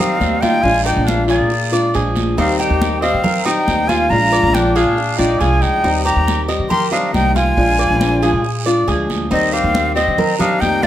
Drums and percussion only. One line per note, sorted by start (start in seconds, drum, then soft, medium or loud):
0.21 high conga medium
0.21 short guiro medium
0.42 high conga medium
0.42 short guiro medium
0.64 high conga soft
0.64 long guiro medium
0.87 high conga soft
1.07 high conga medium
1.07 short guiro medium
1.28 high conga soft
1.28 short guiro medium
1.50 high conga soft
1.50 long guiro medium
1.74 high conga soft
1.94 high conga soft
1.94 short guiro medium
2.16 high conga medium
2.16 short guiro medium
2.38 high conga soft
2.38 long guiro medium
2.60 high conga soft
2.82 high conga loud
2.82 short guiro medium
3.03 high conga soft
3.03 short guiro medium
3.24 high conga soft
3.24 low conga medium
3.24 long guiro medium
3.46 high conga soft
3.68 high conga medium
3.68 short guiro medium
3.89 high conga medium
3.89 short guiro medium
4.11 high conga soft
4.11 long guiro medium
4.32 high conga soft
4.55 high conga medium
4.55 short guiro medium
4.76 high conga soft
4.76 short guiro medium
4.98 high conga soft
4.98 long guiro medium
5.19 high conga soft
5.41 high conga soft
5.41 short guiro medium
5.62 short guiro medium
5.84 high conga soft
5.84 long guiro medium
6.07 high conga soft
6.28 high conga medium
6.28 short guiro medium
6.49 high conga soft
6.49 short guiro medium
6.71 high conga soft
6.71 low conga medium
6.71 long guiro medium
6.92 high conga soft
7.14 high conga medium
7.14 short guiro medium
7.36 high conga medium
7.36 short guiro medium
7.58 high conga soft
7.58 long guiro medium
7.80 high conga soft
8.01 high conga medium
8.01 short guiro medium
8.23 high conga soft
8.23 short guiro medium
8.44 high conga soft
8.44 long guiro medium
8.66 high conga soft
8.88 high conga soft
8.88 short guiro medium
9.10 high conga medium
9.10 short guiro medium
9.32 high conga soft
9.32 long guiro medium
9.54 high conga soft
9.74 high conga medium
9.74 short guiro medium
9.97 high conga soft
9.97 short guiro medium
10.18 high conga soft
10.18 low conga medium
10.18 long guiro medium
10.40 high conga soft
10.40 low conga medium
10.62 high conga medium
10.62 short guiro medium
10.83 high conga medium
10.83 short guiro medium